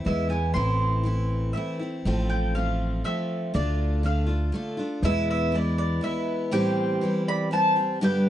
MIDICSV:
0, 0, Header, 1, 5, 480
1, 0, Start_track
1, 0, Key_signature, 0, "minor"
1, 0, Tempo, 497512
1, 548, Time_signature, 3, 2, 24, 8
1, 7998, End_track
2, 0, Start_track
2, 0, Title_t, "Mandolin"
2, 0, Program_c, 0, 25
2, 61, Note_on_c, 0, 76, 77
2, 282, Note_off_c, 0, 76, 0
2, 286, Note_on_c, 0, 80, 79
2, 514, Note_off_c, 0, 80, 0
2, 518, Note_on_c, 0, 84, 90
2, 1454, Note_off_c, 0, 84, 0
2, 1476, Note_on_c, 0, 76, 70
2, 1937, Note_off_c, 0, 76, 0
2, 2214, Note_on_c, 0, 79, 88
2, 2443, Note_off_c, 0, 79, 0
2, 2460, Note_on_c, 0, 77, 79
2, 2938, Note_off_c, 0, 77, 0
2, 2942, Note_on_c, 0, 76, 85
2, 3390, Note_off_c, 0, 76, 0
2, 3423, Note_on_c, 0, 74, 79
2, 3910, Note_off_c, 0, 74, 0
2, 3913, Note_on_c, 0, 77, 77
2, 4591, Note_off_c, 0, 77, 0
2, 4868, Note_on_c, 0, 76, 103
2, 5090, Note_off_c, 0, 76, 0
2, 5118, Note_on_c, 0, 76, 93
2, 5356, Note_on_c, 0, 74, 85
2, 5359, Note_off_c, 0, 76, 0
2, 5568, Note_off_c, 0, 74, 0
2, 5580, Note_on_c, 0, 74, 87
2, 5821, Note_off_c, 0, 74, 0
2, 5824, Note_on_c, 0, 76, 85
2, 6271, Note_off_c, 0, 76, 0
2, 6296, Note_on_c, 0, 79, 93
2, 7024, Note_off_c, 0, 79, 0
2, 7028, Note_on_c, 0, 83, 102
2, 7250, Note_off_c, 0, 83, 0
2, 7265, Note_on_c, 0, 81, 96
2, 7711, Note_off_c, 0, 81, 0
2, 7757, Note_on_c, 0, 79, 103
2, 7998, Note_off_c, 0, 79, 0
2, 7998, End_track
3, 0, Start_track
3, 0, Title_t, "Flute"
3, 0, Program_c, 1, 73
3, 6300, Note_on_c, 1, 72, 89
3, 6984, Note_off_c, 1, 72, 0
3, 7024, Note_on_c, 1, 74, 83
3, 7247, Note_off_c, 1, 74, 0
3, 7258, Note_on_c, 1, 72, 87
3, 7708, Note_off_c, 1, 72, 0
3, 7756, Note_on_c, 1, 71, 81
3, 7974, Note_off_c, 1, 71, 0
3, 7998, End_track
4, 0, Start_track
4, 0, Title_t, "Steel-string acoustic guitar"
4, 0, Program_c, 2, 25
4, 45, Note_on_c, 2, 52, 51
4, 61, Note_on_c, 2, 56, 60
4, 70, Note_on_c, 2, 59, 55
4, 79, Note_on_c, 2, 64, 64
4, 265, Note_off_c, 2, 64, 0
4, 275, Note_off_c, 2, 59, 0
4, 277, Note_on_c, 2, 64, 42
4, 287, Note_on_c, 2, 59, 36
4, 289, Note_off_c, 2, 56, 0
4, 296, Note_off_c, 2, 52, 0
4, 301, Note_on_c, 2, 56, 40
4, 312, Note_on_c, 2, 52, 35
4, 521, Note_off_c, 2, 52, 0
4, 523, Note_on_c, 2, 45, 65
4, 532, Note_off_c, 2, 64, 0
4, 532, Note_on_c, 2, 52, 67
4, 533, Note_off_c, 2, 56, 0
4, 537, Note_off_c, 2, 59, 0
4, 537, Note_on_c, 2, 57, 69
4, 543, Note_on_c, 2, 60, 78
4, 545, Note_on_c, 2, 64, 75
4, 986, Note_off_c, 2, 52, 0
4, 997, Note_on_c, 2, 52, 54
4, 1010, Note_off_c, 2, 57, 0
4, 1013, Note_on_c, 2, 57, 56
4, 1015, Note_off_c, 2, 45, 0
4, 1018, Note_off_c, 2, 60, 0
4, 1018, Note_off_c, 2, 64, 0
4, 1022, Note_on_c, 2, 60, 55
4, 1030, Note_on_c, 2, 64, 58
4, 1479, Note_off_c, 2, 52, 0
4, 1490, Note_on_c, 2, 52, 51
4, 1499, Note_off_c, 2, 57, 0
4, 1503, Note_on_c, 2, 57, 63
4, 1505, Note_off_c, 2, 60, 0
4, 1508, Note_off_c, 2, 64, 0
4, 1517, Note_on_c, 2, 60, 63
4, 1521, Note_on_c, 2, 64, 63
4, 1718, Note_off_c, 2, 64, 0
4, 1730, Note_on_c, 2, 64, 43
4, 1737, Note_off_c, 2, 60, 0
4, 1738, Note_off_c, 2, 52, 0
4, 1745, Note_off_c, 2, 57, 0
4, 1749, Note_on_c, 2, 60, 41
4, 1764, Note_on_c, 2, 57, 35
4, 1978, Note_off_c, 2, 64, 0
4, 1982, Note_on_c, 2, 45, 70
4, 1983, Note_off_c, 2, 57, 0
4, 1988, Note_off_c, 2, 60, 0
4, 1990, Note_on_c, 2, 53, 76
4, 1994, Note_on_c, 2, 57, 75
4, 1999, Note_on_c, 2, 60, 91
4, 2006, Note_on_c, 2, 65, 81
4, 2454, Note_off_c, 2, 53, 0
4, 2457, Note_on_c, 2, 53, 56
4, 2464, Note_off_c, 2, 45, 0
4, 2466, Note_off_c, 2, 60, 0
4, 2469, Note_off_c, 2, 57, 0
4, 2472, Note_on_c, 2, 57, 58
4, 2478, Note_on_c, 2, 60, 53
4, 2489, Note_off_c, 2, 65, 0
4, 2493, Note_on_c, 2, 65, 60
4, 2925, Note_off_c, 2, 53, 0
4, 2937, Note_on_c, 2, 53, 61
4, 2941, Note_off_c, 2, 57, 0
4, 2949, Note_off_c, 2, 60, 0
4, 2952, Note_on_c, 2, 57, 65
4, 2960, Note_off_c, 2, 65, 0
4, 2960, Note_on_c, 2, 60, 56
4, 2970, Note_on_c, 2, 65, 60
4, 3406, Note_off_c, 2, 57, 0
4, 3408, Note_off_c, 2, 53, 0
4, 3412, Note_on_c, 2, 50, 71
4, 3418, Note_on_c, 2, 57, 73
4, 3422, Note_off_c, 2, 60, 0
4, 3422, Note_off_c, 2, 65, 0
4, 3426, Note_on_c, 2, 62, 81
4, 3434, Note_on_c, 2, 65, 86
4, 3878, Note_off_c, 2, 50, 0
4, 3890, Note_off_c, 2, 57, 0
4, 3890, Note_on_c, 2, 50, 55
4, 3901, Note_off_c, 2, 62, 0
4, 3901, Note_on_c, 2, 57, 60
4, 3910, Note_off_c, 2, 65, 0
4, 3913, Note_on_c, 2, 62, 61
4, 3924, Note_on_c, 2, 65, 56
4, 4104, Note_off_c, 2, 65, 0
4, 4116, Note_on_c, 2, 65, 51
4, 4127, Note_off_c, 2, 62, 0
4, 4138, Note_off_c, 2, 50, 0
4, 4139, Note_on_c, 2, 62, 43
4, 4140, Note_off_c, 2, 57, 0
4, 4152, Note_on_c, 2, 57, 36
4, 4363, Note_on_c, 2, 50, 62
4, 4366, Note_off_c, 2, 57, 0
4, 4371, Note_off_c, 2, 65, 0
4, 4377, Note_off_c, 2, 62, 0
4, 4377, Note_on_c, 2, 57, 63
4, 4388, Note_on_c, 2, 62, 60
4, 4394, Note_on_c, 2, 65, 72
4, 4591, Note_off_c, 2, 65, 0
4, 4603, Note_on_c, 2, 65, 50
4, 4610, Note_off_c, 2, 62, 0
4, 4614, Note_off_c, 2, 50, 0
4, 4621, Note_off_c, 2, 57, 0
4, 4622, Note_on_c, 2, 62, 55
4, 4636, Note_on_c, 2, 57, 42
4, 4853, Note_on_c, 2, 40, 76
4, 4854, Note_off_c, 2, 65, 0
4, 4857, Note_on_c, 2, 47, 73
4, 4860, Note_on_c, 2, 52, 79
4, 4863, Note_off_c, 2, 62, 0
4, 4867, Note_off_c, 2, 57, 0
4, 4871, Note_on_c, 2, 56, 83
4, 4874, Note_on_c, 2, 59, 78
4, 4875, Note_on_c, 2, 64, 89
4, 5313, Note_off_c, 2, 52, 0
4, 5324, Note_on_c, 2, 52, 55
4, 5330, Note_off_c, 2, 56, 0
4, 5337, Note_off_c, 2, 59, 0
4, 5339, Note_off_c, 2, 40, 0
4, 5341, Note_off_c, 2, 47, 0
4, 5341, Note_on_c, 2, 56, 58
4, 5347, Note_off_c, 2, 64, 0
4, 5349, Note_on_c, 2, 59, 56
4, 5359, Note_on_c, 2, 64, 63
4, 5787, Note_off_c, 2, 52, 0
4, 5799, Note_on_c, 2, 52, 58
4, 5801, Note_off_c, 2, 56, 0
4, 5813, Note_on_c, 2, 56, 58
4, 5815, Note_off_c, 2, 59, 0
4, 5822, Note_off_c, 2, 64, 0
4, 5827, Note_on_c, 2, 59, 68
4, 5834, Note_on_c, 2, 64, 60
4, 6279, Note_off_c, 2, 52, 0
4, 6285, Note_on_c, 2, 45, 76
4, 6290, Note_on_c, 2, 52, 81
4, 6292, Note_off_c, 2, 56, 0
4, 6296, Note_on_c, 2, 55, 83
4, 6300, Note_off_c, 2, 59, 0
4, 6304, Note_off_c, 2, 64, 0
4, 6304, Note_on_c, 2, 60, 90
4, 6307, Note_on_c, 2, 67, 91
4, 6754, Note_off_c, 2, 52, 0
4, 6766, Note_on_c, 2, 52, 56
4, 6774, Note_off_c, 2, 55, 0
4, 6775, Note_off_c, 2, 45, 0
4, 6777, Note_off_c, 2, 60, 0
4, 6778, Note_on_c, 2, 55, 55
4, 6789, Note_on_c, 2, 60, 66
4, 6798, Note_off_c, 2, 67, 0
4, 6801, Note_on_c, 2, 67, 64
4, 7233, Note_off_c, 2, 52, 0
4, 7244, Note_on_c, 2, 52, 58
4, 7245, Note_off_c, 2, 55, 0
4, 7257, Note_off_c, 2, 60, 0
4, 7257, Note_on_c, 2, 55, 67
4, 7264, Note_off_c, 2, 67, 0
4, 7269, Note_on_c, 2, 60, 68
4, 7275, Note_on_c, 2, 67, 68
4, 7473, Note_off_c, 2, 67, 0
4, 7485, Note_on_c, 2, 67, 51
4, 7494, Note_off_c, 2, 60, 0
4, 7495, Note_off_c, 2, 52, 0
4, 7501, Note_off_c, 2, 55, 0
4, 7505, Note_on_c, 2, 60, 46
4, 7518, Note_on_c, 2, 55, 40
4, 7729, Note_off_c, 2, 55, 0
4, 7730, Note_on_c, 2, 43, 82
4, 7731, Note_on_c, 2, 50, 81
4, 7735, Note_off_c, 2, 67, 0
4, 7740, Note_on_c, 2, 55, 82
4, 7742, Note_off_c, 2, 60, 0
4, 7743, Note_on_c, 2, 59, 87
4, 7746, Note_on_c, 2, 62, 96
4, 7749, Note_on_c, 2, 67, 86
4, 7998, Note_off_c, 2, 43, 0
4, 7998, Note_off_c, 2, 50, 0
4, 7998, Note_off_c, 2, 55, 0
4, 7998, Note_off_c, 2, 59, 0
4, 7998, Note_off_c, 2, 62, 0
4, 7998, Note_off_c, 2, 67, 0
4, 7998, End_track
5, 0, Start_track
5, 0, Title_t, "Upright bass"
5, 0, Program_c, 3, 32
5, 58, Note_on_c, 3, 40, 78
5, 518, Note_off_c, 3, 40, 0
5, 534, Note_on_c, 3, 33, 76
5, 1461, Note_off_c, 3, 33, 0
5, 1981, Note_on_c, 3, 33, 78
5, 2905, Note_off_c, 3, 33, 0
5, 3423, Note_on_c, 3, 38, 86
5, 4345, Note_off_c, 3, 38, 0
5, 4848, Note_on_c, 3, 40, 83
5, 5778, Note_off_c, 3, 40, 0
5, 7998, End_track
0, 0, End_of_file